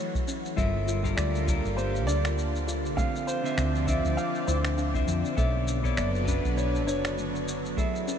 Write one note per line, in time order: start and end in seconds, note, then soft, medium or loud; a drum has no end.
0.00 0.55 E3 medium
0.00 0.53 F#3 medium
0.00 0.26 A3 medium
0.00 0.54 E4 medium
0.00 0.54 F#4 loud
0.00 0.55 G#4 medium
0.00 0.56 A4 medium
0.00 0.60 C#5 loud
0.15 kick loud
0.15 shaker soft
0.28 0.56 C#4 medium
0.28 shaker medium
0.45 shaker soft
0.56 1.14 G1 loud
0.56 5.34 D3 medium
0.56 1.00 G3 medium
0.56 2.95 G3 medium
0.56 2.95 A#3 medium
0.56 1.00 F4 medium
0.56 2.95 F4 medium
0.56 1.01 A4 medium
0.56 1.01 A#4 medium
0.56 1.13 E5 loud
0.56 kick loud
0.56 shaker soft
0.88 1.16 F4 medium
0.88 shaker medium
1.03 1.44 G3 loud
1.03 1.44 F4 medium
1.03 1.45 A4 medium
1.03 1.45 A#4 loud
1.03 kick medium
1.03 shaker soft
1.17 1.60 D2 medium
1.17 1.36 A3 medium
1.17 1.79 D5 loud
1.17 finger snap medium
1.17 shaker soft
1.35 shaker soft
1.45 2.93 G3 medium
1.45 2.94 F4 medium
1.45 2.95 A4 medium
1.45 kick loud
1.45 shaker medium
1.50 2.96 A#4 medium
1.65 2.08 G1 medium
1.65 shaker soft
1.77 2.07 A#3 medium
1.77 2.08 C5 loud
1.77 shaker soft
1.95 shaker soft
2.07 2.94 D2 loud
2.07 2.37 D4 medium
2.07 3.00 D5 loud
2.07 shaker medium
2.25 finger snap medium
2.25 shaker soft
2.38 shaker soft
2.56 shaker soft
2.68 2.97 F4 medium
2.68 shaker medium
2.86 shaker soft
2.96 3.40 D3 medium
2.96 5.36 F3 medium
2.96 3.16 A3 medium
2.96 3.40 C4 medium
2.96 5.35 C4 medium
2.96 3.41 F4 medium
2.96 5.36 D5 loud
2.96 3.28 F5 loud
2.96 3.41 F5 loud
2.96 kick loud
2.96 shaker soft
3.16 shaker soft
3.27 3.83 C5 loud
3.27 shaker medium
3.44 3.84 D3 medium
3.44 3.84 C4 medium
3.44 3.85 F4 medium
3.44 3.85 E5 loud
3.44 shaker soft
3.58 4.00 D2 loud
3.58 3.86 C4 medium
3.58 finger snap medium
3.58 shaker soft
3.75 shaker soft
3.85 4.90 D3 medium
3.85 4.91 C4 medium
3.85 4.16 D4 medium
3.85 4.92 F4 medium
3.85 4.18 E5 loud
3.85 kick loud
3.85 shaker medium
3.90 4.92 D5 medium
4.05 4.16 D2 medium
4.05 shaker soft
4.17 4.48 F5 loud
4.17 shaker soft
4.35 shaker soft
4.47 5.04 D2 medium
4.47 4.75 E4 loud
4.47 5.40 C5 medium
4.47 shaker medium
4.65 finger snap medium
4.65 shaker soft
4.78 5.05 D4 medium
4.78 shaker soft
4.94 5.34 D3 medium
4.94 5.34 C4 medium
4.94 5.35 F4 medium
4.94 5.35 E5 medium
4.94 kick loud
4.94 shaker soft
5.08 5.22 F2 loud
5.08 shaker medium
5.25 shaker soft
5.36 5.94 B1 loud
5.36 7.75 D3 medium
5.36 8.19 F#3 medium
5.36 5.56 A3 medium
5.36 5.80 B3 medium
5.36 7.75 B3 medium
5.36 7.75 D4 loud
5.36 5.81 A4 medium
5.36 5.81 C#5 medium
5.36 5.81 D5 medium
5.36 5.93 E5 loud
5.36 kick loud
5.36 shaker soft
5.68 shaker medium
5.83 6.24 B3 medium
5.83 6.24 A4 medium
5.83 6.25 C#5 medium
5.83 6.25 D5 medium
5.83 kick medium
5.83 shaker soft
5.97 6.40 F#1 loud
5.97 6.26 B3 medium
5.97 6.59 D5 loud
5.97 finger snap medium
5.97 shaker soft
6.15 shaker soft
6.25 7.73 B3 medium
6.25 6.56 C#4 medium
6.25 7.74 A4 medium
6.25 7.75 B4 medium
6.25 kick loud
6.25 shaker medium
6.29 7.75 D4 medium
6.45 6.88 B1 medium
6.45 shaker soft
6.57 6.82 C#5 loud
6.57 shaker soft
6.75 shaker soft
6.81 6.87 D5 medium
6.87 7.74 F#1 loud
6.87 7.16 D4 medium
6.87 7.43 C#5 loud
6.87 shaker medium
7.05 finger snap medium
7.05 shaker soft
7.18 7.36 A3 medium
7.18 shaker soft
7.35 shaker soft
7.48 shaker medium
7.65 shaker soft
7.77 8.19 C#3 medium
7.77 8.19 F#3 medium
7.77 8.06 A3 medium
7.77 8.19 E4 medium
7.77 8.19 G#4 medium
7.77 8.19 A4 medium
7.77 8.19 E5 medium
7.77 kick loud
7.77 shaker soft
7.96 shaker soft
8.08 8.19 C#4 medium
8.08 shaker medium